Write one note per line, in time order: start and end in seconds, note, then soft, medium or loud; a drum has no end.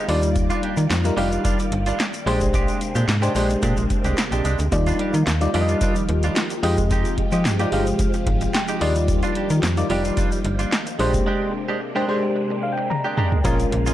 0.00 2.23 F4 medium
0.08 0.51 D#2 loud
0.08 2.25 D#3 medium
0.08 0.29 G3 medium
0.08 0.85 G3 medium
0.08 2.25 G3 medium
0.08 6.59 A#3 medium
0.08 0.23 D4 medium
0.08 0.85 D#4 medium
0.08 0.85 F4 medium
0.08 0.22 F4 medium
0.08 2.25 D5 medium
0.08 0.86 D5 medium
0.08 open hi-hat medium
0.22 muted clean electric guitar stroke medium
0.22 closed hi-hat medium
0.22 shaker medium
0.36 muted clean electric guitar stroke soft
0.36 kick loud
0.36 closed hi-hat medium
0.36 shaker medium
0.50 0.61 G3 medium
0.50 0.62 D4 medium
0.50 0.64 F4 medium
0.50 closed hi-hat soft
0.50 shaker medium
0.62 0.79 G3 medium
0.62 0.77 D4 medium
0.62 0.77 G4 medium
0.62 closed hi-hat medium
0.77 0.87 D#3 medium
0.77 muted clean electric guitar stroke soft
0.77 closed hi-hat soft
0.77 shaker medium
0.90 1.11 F2 loud
0.90 muted clean electric guitar stroke soft
0.90 snare loud
0.90 clap medium
0.90 closed hi-hat medium
0.90 shaker medium
1.04 1.14 G3 medium
1.04 1.14 D#4 medium
1.04 1.15 F4 medium
1.04 1.15 A#4 medium
1.04 muted clean electric guitar stroke medium
1.04 closed hi-hat soft
1.04 shaker medium
1.17 1.38 F1 medium
1.17 1.31 G3 medium
1.17 1.98 G3 medium
1.17 1.31 D4 medium
1.17 1.98 D#4 medium
1.17 1.98 F4 medium
1.17 1.31 G4 medium
1.17 1.98 F5 medium
1.17 open hi-hat medium
1.31 1.43 G3 soft
1.31 1.44 D4 medium
1.31 1.45 F4 medium
1.31 closed hi-hat soft
1.31 shaker soft
1.44 1.65 G3 medium
1.44 1.59 D4 medium
1.44 1.58 F4 loud
1.44 kick loud
1.44 closed hi-hat medium
1.44 shaker medium
1.59 muted clean electric guitar stroke soft
1.59 closed hi-hat soft
1.59 shaker medium
1.72 1.93 G1 medium
1.72 muted clean electric guitar stroke soft
1.72 closed hi-hat medium
1.86 1.98 G3 medium
1.86 1.99 D4 medium
1.86 1.99 F4 medium
1.86 closed hi-hat soft
1.86 shaker soft
1.99 muted clean electric guitar stroke soft
1.99 snare loud
1.99 clap medium
1.99 closed hi-hat medium
1.99 shaker medium
2.14 muted clean electric guitar stroke soft
2.14 closed hi-hat medium
2.14 shaker medium
2.26 2.68 A#1 loud
2.26 4.70 C3 medium
2.26 2.47 G#3 medium
2.26 3.03 G#3 medium
2.26 4.70 G#3 medium
2.26 3.03 D4 medium
2.26 4.70 D4 medium
2.26 2.41 D4 medium
2.26 13.41 G4 medium
2.26 3.04 G4 medium
2.26 2.40 G4 medium
2.26 3.04 C5 loud
2.26 open hi-hat medium
2.41 muted clean electric guitar stroke soft
2.41 kick medium
2.41 closed hi-hat soft
2.41 shaker medium
2.54 2.79 G#3 medium
2.54 2.79 D4 medium
2.54 2.80 G4 medium
2.54 kick loud
2.54 closed hi-hat medium
2.54 shaker medium
2.68 closed hi-hat soft
2.68 shaker medium
2.81 muted clean electric guitar stroke soft
2.81 closed hi-hat medium
2.81 shaker medium
2.95 3.05 A#2 medium
2.95 3.07 G#3 medium
2.95 3.07 D4 medium
2.95 3.08 G4 medium
2.95 closed hi-hat soft
2.95 shaker medium
3.08 3.29 G#2 medium
3.08 muted clean electric guitar stroke soft
3.08 snare loud
3.08 clap medium
3.08 closed hi-hat medium
3.08 shaker medium
3.22 3.32 G#3 medium
3.22 3.34 G#3 medium
3.22 3.32 D4 medium
3.22 3.34 D4 medium
3.22 3.35 G4 medium
3.22 3.32 G4 medium
3.22 3.32 C5 medium
3.22 closed hi-hat soft
3.22 shaker medium
3.35 3.56 A#1 medium
3.35 3.52 G#3 medium
3.35 4.16 G#3 medium
3.35 4.16 D4 medium
3.35 3.50 D4 medium
3.35 4.16 G4 medium
3.35 3.49 G4 medium
3.35 4.16 C5 medium
3.35 open hi-hat medium
3.35 shaker medium
3.50 muted clean electric guitar stroke soft
3.50 closed hi-hat soft
3.50 shaker medium
3.63 3.74 A#2 loud
3.63 3.83 G#3 medium
3.63 3.77 D4 medium
3.63 3.76 G4 medium
3.63 kick loud
3.63 closed hi-hat medium
3.63 shaker medium
3.77 3.87 A#1 medium
3.77 muted clean electric guitar stroke soft
3.77 closed hi-hat soft
3.77 shaker medium
3.90 muted clean electric guitar stroke soft
3.90 kick medium
3.90 closed hi-hat medium
3.90 shaker medium
4.04 4.14 C2 medium
4.04 4.16 G#3 soft
4.04 4.17 D4 soft
4.04 4.17 G4 medium
4.04 closed hi-hat soft
4.04 shaker soft
4.17 muted clean electric guitar stroke soft
4.17 snare loud
4.17 clap loud
4.17 closed hi-hat medium
4.17 shaker medium
4.31 4.42 A#1 medium
4.31 4.43 G#3 soft
4.31 4.44 D4 medium
4.31 4.45 G4 medium
4.31 closed hi-hat soft
4.31 shaker medium
4.45 4.56 C2 medium
4.45 4.65 G#3 medium
4.45 4.59 D4 medium
4.45 4.58 G4 medium
4.45 closed hi-hat medium
4.45 shaker medium
4.59 4.69 D2 medium
4.59 muted clean electric guitar stroke soft
4.59 closed hi-hat medium
4.59 shaker medium
4.72 4.93 D#2 loud
4.72 6.61 D#3 medium
4.72 10.95 F3 medium
4.72 5.22 G3 medium
4.72 5.23 D#4 medium
4.72 10.95 F4 medium
4.72 5.23 F4 medium
4.72 5.23 D5 medium
4.72 muted clean electric guitar stroke soft
4.72 kick loud
4.72 closed hi-hat medium
4.72 shaker medium
4.86 4.98 G3 medium
4.86 4.99 D4 medium
4.86 5.00 F4 medium
4.86 closed hi-hat medium
4.86 shaker medium
4.99 5.16 G3 medium
4.99 5.14 D4 medium
4.99 5.13 G4 medium
4.99 closed hi-hat medium
5.14 5.24 D#3 loud
5.14 muted clean electric guitar stroke soft
5.14 closed hi-hat medium
5.14 shaker medium
5.27 5.48 D#2 loud
5.27 muted clean electric guitar stroke soft
5.27 snare loud
5.27 clap medium
5.27 closed hi-hat medium
5.27 shaker medium
5.41 5.50 G3 medium
5.41 5.51 D#4 medium
5.41 5.51 F4 medium
5.41 5.51 D5 medium
5.41 muted clean electric guitar stroke soft
5.41 closed hi-hat soft
5.41 shaker medium
5.54 5.75 F2 medium
5.54 6.34 G3 medium
5.54 5.69 G3 medium
5.54 5.69 D4 medium
5.54 6.34 D#4 medium
5.54 6.34 F4 medium
5.54 5.69 G4 medium
5.54 5.61 D5 medium
5.54 open hi-hat medium
5.61 6.38 D#5 medium
5.68 5.80 G3 medium
5.68 5.81 D4 medium
5.68 5.82 F4 medium
5.68 closed hi-hat soft
5.68 shaker medium
5.81 6.02 G3 medium
5.81 5.96 D4 medium
5.81 5.95 F4 medium
5.81 kick loud
5.81 closed hi-hat medium
5.81 shaker medium
5.96 muted clean electric guitar stroke soft
5.96 closed hi-hat soft
5.96 shaker medium
6.09 6.30 D#2 medium
6.09 muted clean electric guitar stroke soft
6.09 closed hi-hat medium
6.23 6.35 G3 soft
6.23 6.36 D4 medium
6.23 6.37 F4 medium
6.23 closed hi-hat soft
6.23 shaker soft
6.36 snare loud
6.36 clap medium
6.36 closed hi-hat medium
6.36 shaker medium
6.50 muted clean electric guitar stroke medium
6.50 closed hi-hat soft
6.50 shaker medium
6.63 7.05 F2 loud
6.63 8.79 C3 medium
6.63 7.40 G#3 medium
6.63 6.84 G#3 medium
6.63 8.80 G#3 medium
6.63 6.78 D#4 medium
6.63 7.40 F4 medium
6.63 7.40 G4 medium
6.63 6.77 G4 medium
6.63 7.40 D#5 medium
6.63 open hi-hat medium
6.77 muted clean electric guitar stroke soft
6.77 kick medium
6.77 closed hi-hat medium
6.77 shaker medium
6.91 7.16 G#3 medium
6.91 7.16 D#4 medium
6.91 7.17 G4 loud
6.91 kick loud
6.91 closed hi-hat medium
6.91 shaker medium
7.05 closed hi-hat soft
7.05 shaker medium
7.18 muted clean electric guitar stroke soft
7.18 kick medium
7.18 closed hi-hat medium
7.32 7.46 F3 medium
7.32 7.44 G#3 soft
7.32 7.44 D#4 medium
7.32 7.45 G4 medium
7.32 closed hi-hat soft
7.32 shaker medium
7.45 7.66 G2 medium
7.45 muted clean electric guitar stroke soft
7.45 snare loud
7.45 clap medium
7.45 closed hi-hat medium
7.45 shaker medium
7.59 7.69 G#3 medium
7.59 7.71 G#3 medium
7.59 7.72 D#4 medium
7.59 7.69 F4 medium
7.59 7.72 G4 medium
7.59 7.69 G4 medium
7.59 7.69 D5 medium
7.59 closed hi-hat soft
7.59 shaker soft
7.72 7.93 G1 medium
7.72 7.88 G#3 medium
7.72 8.53 G#3 medium
7.72 7.87 D#4 medium
7.72 8.53 F4 medium
7.72 8.53 G4 medium
7.72 7.86 G4 medium
7.72 8.53 F5 medium
7.72 open hi-hat medium
7.86 muted clean electric guitar stroke medium
7.86 closed hi-hat soft
7.86 shaker medium
7.99 muted clean electric guitar stroke medium
7.99 kick loud
7.99 closed hi-hat medium
7.99 shaker medium
8.14 muted clean electric guitar stroke soft
8.14 closed hi-hat soft
8.14 shaker medium
8.27 8.48 G#1 medium
8.27 kick medium
8.27 closed hi-hat medium
8.41 muted clean electric guitar stroke soft
8.41 closed hi-hat soft
8.41 shaker soft
8.54 8.79 G5 medium
8.54 muted clean electric guitar stroke soft
8.54 snare loud
8.54 clap medium
8.54 closed hi-hat medium
8.54 shaker medium
8.68 8.81 G#3 medium
8.68 8.81 D#4 medium
8.68 8.82 G4 medium
8.68 closed hi-hat soft
8.68 shaker medium
8.81 9.23 D#2 loud
8.81 10.98 D#3 medium
8.81 9.58 G3 medium
8.81 9.02 G3 medium
8.81 13.41 A#3 medium
8.81 8.96 D4 medium
8.81 9.58 D#4 medium
8.81 9.58 F4 medium
8.81 8.95 F4 medium
8.81 9.58 D5 medium
8.81 9.07 D#5 medium
8.81 open hi-hat medium
8.95 muted clean electric guitar stroke medium
8.95 closed hi-hat medium
8.95 shaker medium
9.08 muted clean electric guitar stroke soft
9.08 kick loud
9.08 closed hi-hat medium
9.08 shaker medium
9.23 9.34 G3 medium
9.23 9.35 D4 medium
9.23 9.37 F4 medium
9.23 closed hi-hat medium
9.23 shaker medium
9.35 9.52 G3 medium
9.35 9.50 D4 medium
9.35 9.50 G4 medium
9.35 closed hi-hat medium
9.50 9.60 D#3 loud
9.50 muted clean electric guitar stroke soft
9.50 closed hi-hat soft
9.50 shaker medium
9.63 9.84 F2 medium
9.63 muted clean electric guitar stroke soft
9.63 snare loud
9.63 clap medium
9.63 closed hi-hat medium
9.63 shaker medium
9.77 9.87 G3 medium
9.77 9.87 D#4 medium
9.77 9.87 F4 medium
9.77 9.87 D5 medium
9.77 muted clean electric guitar stroke soft
9.77 closed hi-hat soft
9.77 shaker medium
9.90 10.11 F1 medium
9.90 10.71 G3 medium
9.90 10.05 G3 medium
9.90 10.04 D4 medium
9.90 10.71 D#4 medium
9.90 10.71 F4 medium
9.90 10.04 G4 medium
9.90 10.71 D5 medium
9.90 open hi-hat medium
10.05 10.16 G3 soft
10.05 10.16 D4 medium
10.05 10.17 F4 medium
10.05 closed hi-hat soft
10.05 shaker medium
10.17 10.38 G3 medium
10.17 10.32 D4 medium
10.17 10.31 F4 medium
10.17 kick loud
10.17 closed hi-hat medium
10.17 shaker medium
10.32 muted clean electric guitar stroke soft
10.32 closed hi-hat soft
10.32 shaker medium
10.45 10.66 G1 medium
10.45 muted clean electric guitar stroke soft
10.45 closed hi-hat medium
10.59 10.71 G3 medium
10.59 10.72 D4 medium
10.59 10.72 F4 medium
10.59 closed hi-hat soft
10.59 shaker soft
10.72 muted clean electric guitar stroke soft
10.72 snare loud
10.72 clap medium
10.72 closed hi-hat medium
10.72 shaker medium
10.87 muted clean electric guitar stroke soft
10.87 closed hi-hat soft
10.87 shaker medium
10.99 11.20 A#1 loud
10.99 13.43 C3 medium
10.99 11.76 G#3 medium
10.99 11.20 G#3 medium
10.99 13.43 G#3 medium
10.99 11.76 D4 medium
10.99 13.43 D4 medium
10.99 11.14 D4 medium
10.99 11.76 G4 medium
10.99 11.13 G4 medium
10.99 11.76 C5 loud
10.99 open hi-hat medium
11.14 muted clean electric guitar stroke soft
11.14 kick medium
11.14 closed hi-hat medium
11.14 shaker medium
11.26 11.52 G#3 medium
11.26 11.52 D4 medium
11.26 11.53 G4 loud
11.54 muted clean electric guitar stroke soft
11.68 11.80 G#3 medium
11.68 11.81 D4 medium
11.68 11.81 G4 medium
11.81 muted clean electric guitar stroke soft
11.95 12.05 G#3 medium
11.95 12.07 G#3 medium
11.95 12.05 D4 medium
11.95 12.08 D4 medium
11.95 12.09 G4 medium
11.95 12.05 G4 medium
11.95 12.05 C5 medium
12.08 12.89 G#3 medium
12.08 12.25 G#3 medium
12.08 12.89 D4 medium
12.08 12.23 D4 medium
12.08 12.89 G4 medium
12.08 12.22 G4 medium
12.08 12.89 C5 medium
12.23 muted clean electric guitar stroke soft
12.36 muted clean electric guitar stroke soft
12.50 muted clean electric guitar stroke soft
12.63 12.71 F5 medium
12.73 12.89 G5 medium
12.78 muted clean electric guitar stroke soft
12.90 13.16 A#5 medium
12.90 muted clean electric guitar stroke soft
12.90 high tom medium
13.04 13.16 G#3 soft
13.04 13.17 D4 medium
13.04 13.18 G4 medium
13.17 13.38 G#3 medium
13.17 13.32 D4 medium
13.17 13.31 G4 medium
13.17 13.43 A#5 medium
13.17 mid tom medium
13.32 muted clean electric guitar stroke soft
13.32 floor tom medium
13.44 13.66 A#1 loud
13.44 13.94 C#3 medium
13.44 13.94 F3 medium
13.44 13.94 G#3 medium
13.44 13.65 G#3 medium
13.44 13.94 G#3 medium
13.44 13.94 A#3 medium
13.44 13.94 C#4 medium
13.44 13.59 C#4 medium
13.44 13.94 F4 medium
13.44 13.58 F4 loud
13.44 13.94 A#4 loud
13.44 kick loud
13.44 closed hi-hat medium
13.44 shaker medium
13.59 muted clean electric guitar stroke soft
13.59 closed hi-hat medium
13.59 shaker medium
13.72 13.93 A#1 loud
13.72 muted clean electric guitar stroke soft
13.72 closed hi-hat medium
13.86 13.94 G#3 medium
13.86 13.94 C#4 medium
13.86 13.94 F4 medium
13.86 closed hi-hat soft
13.86 shaker medium